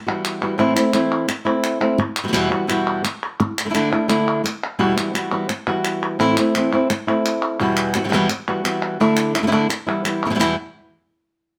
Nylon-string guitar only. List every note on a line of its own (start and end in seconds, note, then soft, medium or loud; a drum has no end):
0.07 0.42 E3 soft
0.07 0.42 G3 soft
0.07 0.42 B3 soft
0.07 0.40 F#4 medium
0.42 0.57 E3 medium
0.42 0.59 G3 soft
0.42 0.59 B3 medium
0.42 0.59 F#4 medium
0.58 0.76 A2 medium
0.58 0.76 E3 medium
0.58 0.76 A3 loud
0.58 0.75 C4 loud
0.58 0.74 E4 loud
0.76 0.92 A3 soft
0.76 0.93 C4 medium
0.76 0.93 E4 medium
0.93 1.27 E3 medium
0.93 1.27 A3 medium
0.93 1.28 C4 medium
0.93 1.28 E4 medium
1.28 muted nylon-string guitar stroke medium
1.45 1.81 A3 medium
1.45 1.80 C4 medium
1.45 1.79 E4 medium
1.80 1.99 A3 medium
1.80 1.98 C4 medium
1.80 1.98 E4 medium
1.98 muted nylon-string guitar stroke medium
2.24 2.27 B2 medium
2.24 2.27 E3 medium
2.24 2.27 G3 medium
2.24 2.28 B3 medium
2.24 2.28 F#4 medium
2.28 2.32 B2 medium
2.28 2.32 E3 medium
2.28 2.32 G3 medium
2.28 2.32 B3 medium
2.28 2.32 F#4 medium
2.33 2.50 E2 medium
2.33 2.50 B2 loud
2.33 2.50 E3 loud
2.33 2.50 G3 medium
2.33 2.50 B3 loud
2.33 2.49 F#4 loud
2.50 2.67 E3 medium
2.50 2.67 G3 medium
2.50 2.67 B3 medium
2.50 2.68 F#4 medium
2.67 3.03 E2 medium
2.67 3.03 B2 medium
2.67 3.03 E3 medium
2.67 3.03 G3 medium
2.67 3.03 B3 medium
2.67 3.03 F#4 loud
3.04 muted nylon-string guitar stroke medium
3.40 muted nylon-string guitar stroke medium
3.65 3.68 D3 medium
3.65 3.69 A3 medium
3.65 3.69 D4 medium
3.65 3.70 E4 medium
3.70 3.73 D3 medium
3.70 3.73 A3 medium
3.70 3.74 D4 medium
3.70 3.74 E4 medium
3.74 3.91 D3 medium
3.74 3.91 A3 medium
3.74 3.91 D4 loud
3.74 3.90 E4 medium
3.91 4.07 A3 soft
3.91 4.08 D4 medium
3.91 4.08 E4 medium
4.08 4.42 D3 medium
4.08 4.43 A3 medium
4.08 4.43 D4 medium
4.08 4.43 E4 medium
4.44 muted nylon-string guitar stroke medium
4.79 4.96 E2 medium
4.79 4.96 B2 medium
4.79 4.96 E3 loud
4.79 4.96 G3 medium
4.79 4.96 B3 loud
4.79 4.95 F#4 loud
4.97 5.12 E3 medium
4.97 5.13 G3 medium
4.97 5.14 B3 medium
4.97 5.14 F#4 medium
5.14 5.31 E3 medium
5.14 5.31 G3 medium
5.14 5.31 B3 medium
5.14 5.30 F#4 medium
5.31 5.48 E3 medium
5.31 5.48 G3 soft
5.31 5.49 B3 medium
5.31 5.48 F#4 medium
5.49 muted nylon-string guitar stroke medium
5.67 6.19 E3 medium
5.67 6.20 G3 soft
5.67 6.19 B3 medium
5.67 6.19 F#4 medium
6.19 6.36 A2 medium
6.19 6.37 E3 loud
6.19 6.37 A3 loud
6.19 6.37 C4 loud
6.19 6.37 E4 loud
6.38 6.55 A3 medium
6.38 6.55 C4 medium
6.38 6.54 E4 medium
6.55 6.72 E3 medium
6.55 6.72 A3 medium
6.55 6.73 C4 medium
6.55 6.72 E4 medium
6.73 6.89 A3 medium
6.73 6.89 C4 medium
6.73 6.89 E4 medium
6.90 muted nylon-string guitar stroke medium
7.07 7.60 A3 medium
7.07 7.60 C4 medium
7.07 7.61 E4 medium
7.60 7.94 E2 medium
7.60 7.95 B2 loud
7.60 7.95 E3 loud
7.60 7.95 G3 medium
7.60 7.95 B3 medium
7.60 7.94 F#4 loud
7.95 8.03 E3 medium
7.95 8.04 G3 medium
7.95 8.04 B3 medium
7.95 8.04 F#4 medium
8.04 8.07 B2 medium
8.04 8.08 E3 medium
8.04 8.08 G3 medium
8.04 8.08 B3 medium
8.04 8.09 F#4 medium
8.09 8.12 B2 medium
8.09 8.12 E3 medium
8.09 8.13 G3 medium
8.09 8.13 B3 medium
8.09 8.13 F#4 medium
8.13 8.30 E2 medium
8.13 8.29 B2 loud
8.13 8.29 E3 loud
8.13 8.30 G3 loud
8.13 8.30 B3 loud
8.13 8.30 F#4 loud
8.31 muted nylon-string guitar stroke medium
8.48 8.63 E3 soft
8.48 8.63 G3 medium
8.48 8.64 B3 medium
8.48 8.65 F#4 medium
8.64 8.99 E3 medium
8.64 8.99 G3 medium
8.64 9.00 B3 medium
8.64 9.00 F#4 medium
9.00 9.35 D3 medium
9.00 9.35 A3 loud
9.00 9.34 D4 loud
9.00 9.33 E4 loud
9.35 9.42 D3 medium
9.35 9.38 A3 medium
9.35 9.38 D4 medium
9.35 9.38 E4 medium
9.39 9.46 D3 medium
9.39 9.43 D4 medium
9.39 9.43 E4 medium
9.43 9.46 A3 medium
9.43 9.47 D4 medium
9.43 9.47 E4 medium
9.47 9.51 D3 medium
9.47 9.51 A3 medium
9.47 9.52 D4 medium
9.47 9.51 E4 medium
9.52 9.69 D3 loud
9.52 9.69 A3 medium
9.52 9.69 D4 medium
9.52 9.69 E4 loud
9.69 muted nylon-string guitar stroke medium
9.87 10.03 E3 soft
9.87 10.04 G3 soft
9.87 10.04 B3 soft
9.87 10.04 E4 medium
10.04 10.25 E3 medium
10.04 10.25 G3 medium
10.04 10.25 B3 medium
10.04 10.26 E4 medium
10.25 10.29 B2 medium
10.25 10.29 E3 medium
10.25 10.29 G3 medium
10.25 10.30 B3 medium
10.25 10.30 E4 medium
10.30 10.33 B2 medium
10.30 10.34 E3 medium
10.30 10.34 G3 medium
10.30 10.34 B3 medium
10.30 10.35 E4 medium
10.35 10.38 B2 medium
10.35 10.39 E3 medium
10.35 10.39 G3 medium
10.35 10.39 B3 medium
10.35 10.39 E4 medium
10.39 10.54 E2 loud
10.39 10.54 B2 medium
10.39 10.54 E3 loud
10.39 10.54 G3 loud
10.39 10.55 B3 loud
10.39 10.55 E4 loud